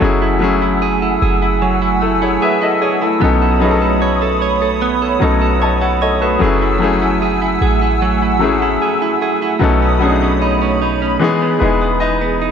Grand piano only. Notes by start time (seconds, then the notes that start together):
Already playing: A4 D#5
0.00 F#3 A3 C#4 E4 G#4
0.39 F#3 A3 C#4 E4
0.44 G#4
2.02 E4 A4
2.23 G#4 C#5
2.42 B4 E5
2.62 A4 D#5
2.82 G#4 C#5
3.02 E4 A4
3.20 F#3 B3 C#4 D#4
3.24 A4
3.60 F#3 B3 C#4 D#4
3.64 G#4
3.71 A4
5.20 F#3 B3 C#4 D#4
5.24 A4
5.62 D#5 A5
5.81 C#5 F#5
6.02 A4 D#5
6.21 F#4 B4
6.39 F#3 A3 C#4 E4
6.43 G#4
6.79 F#3 A3 C#4 E4
6.84 G#4
8.39 F#3 A3 C#4 E4
8.44 G#4
9.59 F#3 B3 C#4 D#4
9.64 A4
9.99 F#3 B3 C#4 D4
10.04 G#4
10.09 D#4
11.19 E3 G#3 B3 D#4
11.24 G#4
11.59 E3 G#3 B3 D#4 B4
11.64 G#4
12.00 D#5